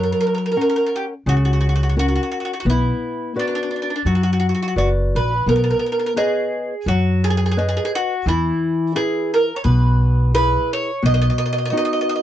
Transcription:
Already playing: upright bass F#2, nylon-string guitar F#3
0.03 mandolin A#4
0.12 mandolin A#4
0.21 mandolin A#4
0.27 mandolin A#4
0.35 mandolin A#4
0.46 mandolin A#4
0.52 mandolin A#4
0.56 nylon-string guitar C#4 A#4 F#5
0.61 mandolin A#4
0.70 mandolin A#4
0.76 mandolin A#4
0.86 mandolin A#4
0.96 mandolin G4
1.26 upright bass C#2, nylon-string guitar C#3, mandolin F#4
1.37 mandolin F#4
1.45 mandolin F#4
1.53 mandolin F#4
1.61 mandolin F#4
1.69 mandolin F#4
1.76 mandolin F#4
1.83 mandolin F#4
1.89 mandolin F#4
1.97 nylon-string guitar C#4 F#4 A#4, mandolin F#4
2.08 mandolin F#4
2.15 mandolin F#4
2.23 mandolin F#4
2.32 mandolin F#4
2.40 mandolin F#4
2.45 mandolin F#4
2.53 mandolin F#4
2.60 mandolin F#4
2.65 upright bass B1, nylon-string guitar B3
2.70 mandolin E4
3.36 mandolin D4, nylon-string guitar F#4 B4 D5
3.47 mandolin D4
3.55 mandolin D4
3.63 mandolin D4
3.71 mandolin D4
3.76 mandolin D4
3.82 mandolin D4
3.90 mandolin D4
3.96 mandolin D4
4.05 upright bass F#2, nylon-string guitar F#3, mandolin F#4
4.15 mandolin F#4
4.23 mandolin F#4
4.33 mandolin F#4
4.40 mandolin F#4
4.49 mandolin F#4
4.55 mandolin F#4
4.63 mandolin F#4
4.68 mandolin F#4
4.76 upright bass F#1, nylon-string guitar F#4 B4 D5, mandolin F#4
5.15 upright bass A#1, mandolin B4
5.46 upright bass B1, nylon-string guitar B3, mandolin A#4
5.56 mandolin A#4
5.64 mandolin A#4
5.70 mandolin A#4
5.79 mandolin A#4
5.86 mandolin A#4
5.92 mandolin A#4
5.99 mandolin A#4
6.06 mandolin A#4
6.16 mandolin G#4, nylon-string guitar B4 C#5 D#5
6.86 upright bass F#2, nylon-string guitar F#3, mandolin F#4
7.24 mandolin G#4
7.30 mandolin G#4
7.37 mandolin G#4
7.46 mandolin G#4
7.51 mandolin G#4
7.57 mandolin G#4, nylon-string guitar B4 C#5 D#5
7.69 mandolin G#4
7.77 mandolin G#4
7.85 mandolin G#4
7.95 mandolin F#4
8.26 upright bass E2, nylon-string guitar E3, mandolin E4
8.95 nylon-string guitar E4 G#4 B4, mandolin G#4
9.34 mandolin A#4
9.56 mandolin C#5
9.64 upright bass B1, nylon-string guitar B2, mandolin B4
10.34 nylon-string guitar E4 G#4 B4, mandolin B4
10.73 mandolin C#5
11.03 upright bass B1, nylon-string guitar B2, mandolin D#5
11.14 mandolin D#5
11.22 mandolin D#5
11.30 mandolin D#5
11.38 mandolin D#5
11.46 mandolin D#5
11.53 mandolin D#5
11.58 mandolin D#5
11.66 mandolin D#5
11.70 nylon-string guitar B3 D#4 F#4, mandolin D#5
11.77 mandolin D#5
11.85 mandolin D#5
11.93 mandolin D#5
12.01 mandolin D#5
12.09 mandolin D#5
12.16 mandolin D#5

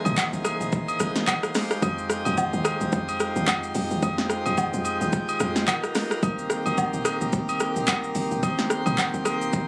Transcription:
Already playing: pipe organ E3 A#3 D#4 G#4 C5
0.05 log drum bass C2, mid tom, high agogo, shaker
0.17 kick, clap, low woodblock, shaker
0.33 log drum bass C2, shaker
0.44 cross-stick, high agogo, shaker
0.61 log drum bass A#1, shaker
0.72 kick, shaker
0.88 high agogo, shaker
1.00 log drum bass C2, cross-stick, shaker
1.16 snare, shaker
1.27 kick, clap, high agogo, low woodblock, shaker
1.43 cross-stick, shaker
1.55 pipe organ F3 G#3 G4, cross-stick, snare, open hi-hat, shaker
1.71 cross-stick, shaker
1.82 log drum bass F2, kick, high agogo, shaker
1.98 shaker
2.10 cross-stick, shaker
2.25 log drum bass F2, high agogo, shaker
2.37 kick, low woodblock, shaker
2.53 log drum bass D#2, shaker
2.65 cross-stick, high agogo, shaker
2.81 log drum bass D#2, shaker
2.92 log drum bass F2, kick, shaker
3.09 high agogo, shaker
3.20 cross-stick, shaker
3.36 log drum bass D#2, shaker
3.47 log drum bass F2, kick, clap, high agogo, low woodblock, shaker
3.63 shaker
3.75 log drum bass F2, open hi-hat, shaker
3.91 log drum bass D#2, shaker
4.03 log drum bass F2, kick, high agogo, shaker
4.18 snare, shaker
4.30 cross-stick, shaker
4.46 log drum bass F2, high agogo, shaker
4.57 kick, low woodblock, shaker
4.74 log drum bass F2, shaker
4.85 high agogo, shaker
5.01 log drum bass D#2, shaker
5.12 kick, shaker
5.29 high agogo, shaker
5.40 log drum bass F2, cross-stick, shaker
5.56 snare, shaker
5.68 pipe organ B3 A#4, kick, clap, high agogo, low woodblock, shaker
5.83 cross-stick, shaker
5.95 cross-stick, snare, open hi-hat, shaker
6.11 cross-stick, shaker
6.23 log drum bass C2, pipe organ D#3 A#3 C4, kick, high agogo, shaker
6.39 shaker
6.50 cross-stick, shaker
6.66 log drum bass C2, high agogo, shaker
6.78 kick, low woodblock, shaker
6.94 log drum bass A#1, shaker
7.05 cross-stick, high agogo, shaker
7.21 log drum bass A#1, shaker
7.32 log drum bass C2, kick, shaker
7.49 high agogo, shaker
7.60 cross-stick, shaker
7.76 log drum bass A#1, shaker
7.88 log drum bass C2, kick, clap, high agogo, low woodblock, shaker
8.04 shaker
8.15 log drum bass C2, open hi-hat, shaker
8.31 log drum bass A#1, shaker
8.43 log drum bass C2, pipe organ C5, kick, high agogo, shaker
8.59 snare, shaker
8.70 cross-stick, shaker
8.86 log drum bass C2, mid tom, high agogo, shaker
8.98 kick, clap, low woodblock, shaker
9.14 log drum bass C2, shaker
9.25 cross-stick, high agogo, shaker
9.42 log drum bass A#1, shaker
9.53 kick, shaker

